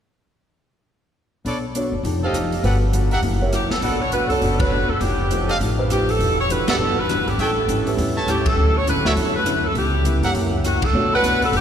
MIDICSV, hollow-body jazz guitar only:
0, 0, Header, 1, 2, 480
1, 0, Start_track
1, 0, Key_signature, 2, "minor"
1, 0, Tempo, 296589
1, 2353, Time_signature, 4, 2, 24, 8
1, 18785, End_track
2, 0, Start_track
2, 0, Title_t, "Hollow-body jazz guitar"
2, 0, Program_c, 0, 26
2, 2342, Note_on_c, 0, 59, 43
2, 2353, Note_on_c, 0, 62, 39
2, 2370, Note_on_c, 0, 69, 44
2, 2379, Note_on_c, 0, 73, 44
2, 2658, Note_off_c, 0, 59, 0
2, 2664, Note_off_c, 0, 62, 0
2, 2672, Note_off_c, 0, 69, 0
2, 2677, Note_off_c, 0, 73, 0
2, 2837, Note_on_c, 0, 59, 55
2, 2846, Note_on_c, 0, 62, 61
2, 2858, Note_on_c, 0, 69, 65
2, 2861, Note_on_c, 0, 73, 63
2, 3146, Note_off_c, 0, 59, 0
2, 3151, Note_off_c, 0, 62, 0
2, 3156, Note_off_c, 0, 69, 0
2, 3158, Note_off_c, 0, 73, 0
2, 3307, Note_on_c, 0, 53, 47
2, 3320, Note_on_c, 0, 63, 42
2, 3330, Note_on_c, 0, 67, 46
2, 3344, Note_on_c, 0, 69, 50
2, 3621, Note_off_c, 0, 53, 0
2, 3627, Note_off_c, 0, 63, 0
2, 3633, Note_off_c, 0, 67, 0
2, 3639, Note_off_c, 0, 69, 0
2, 3787, Note_on_c, 0, 53, 62
2, 3794, Note_on_c, 0, 63, 57
2, 3803, Note_on_c, 0, 67, 63
2, 3814, Note_on_c, 0, 69, 62
2, 4101, Note_off_c, 0, 53, 0
2, 4104, Note_off_c, 0, 63, 0
2, 4109, Note_off_c, 0, 67, 0
2, 4114, Note_off_c, 0, 69, 0
2, 4265, Note_on_c, 0, 55, 40
2, 4274, Note_on_c, 0, 59, 43
2, 4286, Note_on_c, 0, 66, 43
2, 4306, Note_on_c, 0, 69, 46
2, 4580, Note_off_c, 0, 55, 0
2, 4584, Note_off_c, 0, 59, 0
2, 4590, Note_off_c, 0, 66, 0
2, 4600, Note_off_c, 0, 69, 0
2, 4744, Note_on_c, 0, 55, 59
2, 4759, Note_on_c, 0, 59, 66
2, 4765, Note_on_c, 0, 66, 58
2, 4776, Note_on_c, 0, 69, 66
2, 5059, Note_off_c, 0, 55, 0
2, 5067, Note_off_c, 0, 59, 0
2, 5069, Note_off_c, 0, 66, 0
2, 5075, Note_off_c, 0, 69, 0
2, 5231, Note_on_c, 0, 54, 42
2, 5239, Note_on_c, 0, 58, 49
2, 5249, Note_on_c, 0, 64, 49
2, 5263, Note_on_c, 0, 67, 53
2, 5543, Note_off_c, 0, 54, 0
2, 5547, Note_off_c, 0, 58, 0
2, 5552, Note_off_c, 0, 64, 0
2, 5558, Note_off_c, 0, 67, 0
2, 5709, Note_on_c, 0, 54, 57
2, 5725, Note_on_c, 0, 64, 62
2, 5728, Note_on_c, 0, 58, 58
2, 5732, Note_on_c, 0, 67, 57
2, 6021, Note_off_c, 0, 54, 0
2, 6030, Note_off_c, 0, 64, 0
2, 6031, Note_off_c, 0, 58, 0
2, 6033, Note_off_c, 0, 67, 0
2, 6189, Note_on_c, 0, 47, 36
2, 6203, Note_on_c, 0, 57, 37
2, 6205, Note_on_c, 0, 62, 41
2, 6219, Note_on_c, 0, 66, 42
2, 6501, Note_off_c, 0, 47, 0
2, 6508, Note_off_c, 0, 57, 0
2, 6510, Note_off_c, 0, 62, 0
2, 6516, Note_off_c, 0, 66, 0
2, 6675, Note_on_c, 0, 47, 57
2, 6675, Note_on_c, 0, 57, 58
2, 6695, Note_on_c, 0, 62, 58
2, 6696, Note_on_c, 0, 66, 62
2, 6984, Note_off_c, 0, 47, 0
2, 6984, Note_off_c, 0, 57, 0
2, 6994, Note_off_c, 0, 62, 0
2, 6995, Note_off_c, 0, 66, 0
2, 7143, Note_on_c, 0, 47, 46
2, 7156, Note_on_c, 0, 57, 43
2, 7165, Note_on_c, 0, 62, 51
2, 7173, Note_on_c, 0, 66, 42
2, 7458, Note_off_c, 0, 47, 0
2, 7465, Note_off_c, 0, 57, 0
2, 7469, Note_off_c, 0, 62, 0
2, 7473, Note_off_c, 0, 66, 0
2, 7626, Note_on_c, 0, 47, 54
2, 7644, Note_on_c, 0, 57, 53
2, 7645, Note_on_c, 0, 62, 54
2, 7662, Note_on_c, 0, 66, 59
2, 7939, Note_off_c, 0, 47, 0
2, 7948, Note_off_c, 0, 57, 0
2, 7949, Note_off_c, 0, 62, 0
2, 7958, Note_off_c, 0, 66, 0
2, 8118, Note_on_c, 0, 53, 36
2, 8126, Note_on_c, 0, 57, 43
2, 8138, Note_on_c, 0, 63, 41
2, 8156, Note_on_c, 0, 67, 46
2, 8426, Note_off_c, 0, 53, 0
2, 8430, Note_off_c, 0, 57, 0
2, 8436, Note_off_c, 0, 63, 0
2, 8445, Note_off_c, 0, 67, 0
2, 8603, Note_on_c, 0, 53, 60
2, 8613, Note_on_c, 0, 57, 57
2, 8623, Note_on_c, 0, 63, 55
2, 8629, Note_on_c, 0, 67, 61
2, 8908, Note_off_c, 0, 53, 0
2, 8913, Note_off_c, 0, 57, 0
2, 8918, Note_off_c, 0, 63, 0
2, 8921, Note_off_c, 0, 67, 0
2, 9080, Note_on_c, 0, 53, 44
2, 9092, Note_on_c, 0, 57, 48
2, 9105, Note_on_c, 0, 63, 52
2, 9108, Note_on_c, 0, 67, 47
2, 9386, Note_off_c, 0, 53, 0
2, 9393, Note_off_c, 0, 57, 0
2, 9399, Note_off_c, 0, 63, 0
2, 9400, Note_off_c, 0, 67, 0
2, 9563, Note_on_c, 0, 53, 53
2, 9579, Note_on_c, 0, 57, 54
2, 9585, Note_on_c, 0, 63, 60
2, 9585, Note_on_c, 0, 67, 64
2, 9868, Note_off_c, 0, 53, 0
2, 9876, Note_off_c, 0, 57, 0
2, 9879, Note_off_c, 0, 63, 0
2, 9879, Note_off_c, 0, 67, 0
2, 10040, Note_on_c, 0, 52, 43
2, 10052, Note_on_c, 0, 55, 41
2, 10061, Note_on_c, 0, 62, 39
2, 10071, Note_on_c, 0, 66, 46
2, 10346, Note_off_c, 0, 52, 0
2, 10353, Note_off_c, 0, 55, 0
2, 10357, Note_off_c, 0, 62, 0
2, 10362, Note_off_c, 0, 66, 0
2, 10516, Note_on_c, 0, 52, 54
2, 10528, Note_on_c, 0, 55, 65
2, 10540, Note_on_c, 0, 62, 62
2, 10544, Note_on_c, 0, 66, 69
2, 10825, Note_off_c, 0, 52, 0
2, 10831, Note_off_c, 0, 55, 0
2, 10836, Note_off_c, 0, 62, 0
2, 10839, Note_off_c, 0, 66, 0
2, 10996, Note_on_c, 0, 52, 43
2, 11007, Note_on_c, 0, 55, 41
2, 11023, Note_on_c, 0, 62, 47
2, 11032, Note_on_c, 0, 66, 48
2, 11305, Note_off_c, 0, 52, 0
2, 11310, Note_off_c, 0, 55, 0
2, 11318, Note_off_c, 0, 62, 0
2, 11322, Note_off_c, 0, 66, 0
2, 11481, Note_on_c, 0, 52, 59
2, 11495, Note_on_c, 0, 55, 58
2, 11503, Note_on_c, 0, 62, 59
2, 11503, Note_on_c, 0, 66, 57
2, 11787, Note_off_c, 0, 52, 0
2, 11794, Note_off_c, 0, 55, 0
2, 11798, Note_off_c, 0, 62, 0
2, 11798, Note_off_c, 0, 66, 0
2, 11961, Note_on_c, 0, 45, 36
2, 11967, Note_on_c, 0, 55, 43
2, 11979, Note_on_c, 0, 61, 42
2, 11993, Note_on_c, 0, 64, 42
2, 12267, Note_off_c, 0, 45, 0
2, 12270, Note_off_c, 0, 55, 0
2, 12276, Note_off_c, 0, 61, 0
2, 12283, Note_off_c, 0, 64, 0
2, 12428, Note_on_c, 0, 45, 54
2, 12436, Note_on_c, 0, 55, 60
2, 12453, Note_on_c, 0, 61, 64
2, 12460, Note_on_c, 0, 64, 68
2, 12740, Note_off_c, 0, 45, 0
2, 12745, Note_off_c, 0, 55, 0
2, 12753, Note_off_c, 0, 61, 0
2, 12757, Note_off_c, 0, 64, 0
2, 12914, Note_on_c, 0, 45, 49
2, 12932, Note_on_c, 0, 55, 46
2, 12941, Note_on_c, 0, 61, 51
2, 12952, Note_on_c, 0, 64, 57
2, 13224, Note_off_c, 0, 45, 0
2, 13233, Note_off_c, 0, 55, 0
2, 13237, Note_off_c, 0, 61, 0
2, 13243, Note_off_c, 0, 64, 0
2, 13400, Note_on_c, 0, 45, 53
2, 13412, Note_on_c, 0, 61, 60
2, 13415, Note_on_c, 0, 55, 52
2, 13420, Note_on_c, 0, 64, 66
2, 13706, Note_off_c, 0, 45, 0
2, 13712, Note_off_c, 0, 61, 0
2, 13714, Note_off_c, 0, 55, 0
2, 13716, Note_off_c, 0, 64, 0
2, 13875, Note_on_c, 0, 50, 39
2, 13885, Note_on_c, 0, 54, 41
2, 13895, Note_on_c, 0, 61, 39
2, 13908, Note_on_c, 0, 64, 39
2, 14184, Note_off_c, 0, 50, 0
2, 14189, Note_off_c, 0, 54, 0
2, 14195, Note_off_c, 0, 61, 0
2, 14201, Note_off_c, 0, 64, 0
2, 14360, Note_on_c, 0, 50, 59
2, 14366, Note_on_c, 0, 61, 61
2, 14369, Note_on_c, 0, 54, 62
2, 14373, Note_on_c, 0, 64, 69
2, 14667, Note_off_c, 0, 50, 0
2, 14670, Note_off_c, 0, 61, 0
2, 14671, Note_off_c, 0, 54, 0
2, 14674, Note_off_c, 0, 64, 0
2, 14839, Note_on_c, 0, 50, 41
2, 14847, Note_on_c, 0, 54, 43
2, 14866, Note_on_c, 0, 61, 47
2, 14871, Note_on_c, 0, 64, 46
2, 15146, Note_off_c, 0, 50, 0
2, 15150, Note_off_c, 0, 54, 0
2, 15160, Note_off_c, 0, 61, 0
2, 15162, Note_off_c, 0, 64, 0
2, 15304, Note_on_c, 0, 50, 55
2, 15312, Note_on_c, 0, 54, 54
2, 15312, Note_on_c, 0, 61, 53
2, 15321, Note_on_c, 0, 64, 63
2, 15619, Note_off_c, 0, 50, 0
2, 15623, Note_off_c, 0, 54, 0
2, 15623, Note_off_c, 0, 61, 0
2, 15627, Note_off_c, 0, 64, 0
2, 15784, Note_on_c, 0, 49, 37
2, 15794, Note_on_c, 0, 55, 40
2, 15804, Note_on_c, 0, 59, 42
2, 15822, Note_on_c, 0, 64, 44
2, 16099, Note_off_c, 0, 49, 0
2, 16104, Note_off_c, 0, 55, 0
2, 16109, Note_off_c, 0, 59, 0
2, 16118, Note_off_c, 0, 64, 0
2, 16252, Note_on_c, 0, 49, 60
2, 16259, Note_on_c, 0, 55, 53
2, 16273, Note_on_c, 0, 59, 59
2, 16278, Note_on_c, 0, 64, 66
2, 16573, Note_off_c, 0, 49, 0
2, 16577, Note_off_c, 0, 55, 0
2, 16583, Note_off_c, 0, 59, 0
2, 16586, Note_off_c, 0, 64, 0
2, 16735, Note_on_c, 0, 54, 51
2, 16744, Note_on_c, 0, 58, 50
2, 16763, Note_on_c, 0, 64, 53
2, 16771, Note_on_c, 0, 67, 52
2, 17055, Note_off_c, 0, 54, 0
2, 17059, Note_off_c, 0, 58, 0
2, 17068, Note_off_c, 0, 64, 0
2, 17073, Note_off_c, 0, 67, 0
2, 17223, Note_on_c, 0, 54, 57
2, 17235, Note_on_c, 0, 58, 64
2, 17247, Note_on_c, 0, 64, 62
2, 17253, Note_on_c, 0, 67, 61
2, 17539, Note_off_c, 0, 54, 0
2, 17545, Note_off_c, 0, 58, 0
2, 17551, Note_off_c, 0, 64, 0
2, 17554, Note_off_c, 0, 67, 0
2, 17715, Note_on_c, 0, 47, 40
2, 17726, Note_on_c, 0, 57, 43
2, 17743, Note_on_c, 0, 62, 42
2, 17745, Note_on_c, 0, 66, 48
2, 18025, Note_off_c, 0, 47, 0
2, 18030, Note_off_c, 0, 57, 0
2, 18039, Note_off_c, 0, 62, 0
2, 18040, Note_off_c, 0, 66, 0
2, 18197, Note_on_c, 0, 47, 65
2, 18215, Note_on_c, 0, 57, 61
2, 18218, Note_on_c, 0, 62, 63
2, 18221, Note_on_c, 0, 66, 68
2, 18506, Note_off_c, 0, 47, 0
2, 18515, Note_off_c, 0, 57, 0
2, 18516, Note_off_c, 0, 62, 0
2, 18518, Note_off_c, 0, 66, 0
2, 18681, Note_on_c, 0, 47, 47
2, 18690, Note_on_c, 0, 57, 43
2, 18706, Note_on_c, 0, 62, 51
2, 18713, Note_on_c, 0, 66, 44
2, 18785, Note_off_c, 0, 47, 0
2, 18785, Note_off_c, 0, 57, 0
2, 18785, Note_off_c, 0, 62, 0
2, 18785, Note_off_c, 0, 66, 0
2, 18785, End_track
0, 0, End_of_file